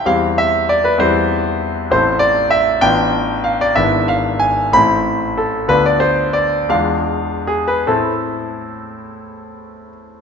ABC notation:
X:1
M:6/8
L:1/16
Q:3/8=62
K:C
V:1 name="Grand piano"
f2 e2 d B c4 z2 | [K:Am] c2 d2 e2 g4 f d | e2 f2 ^g2 b4 A2 | B d c2 d2 f4 ^G B |
A8- A2 z2 |]
V:2 name="Grand piano"
[E,,G,CE]6 [E,,G,CE]6 | [K:Am] [A,,,A,CE]6 [A,,,B,DF]6 | [^G,,,B,DE]6 [A,,,A,CE]6 | [D,,B,DF]6 [E,,^G,DF]6 |
[A,,A,CE]12 |]